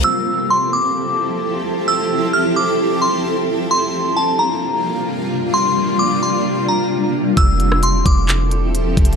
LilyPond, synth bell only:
\new Staff \with { instrumentName = "Synth bell" } { \time 4/4 \key f \major \tempo 4 = 131 e'''4 c'''8 d'''4. r4 | e'''4 f'''8 d'''4 c'''8 r4 | c'''4 a''8 bes''4. r4 | c'''4 d'''8 c'''4 bes''8 r4 |
e'''4 c'''8 d'''4. r4 | }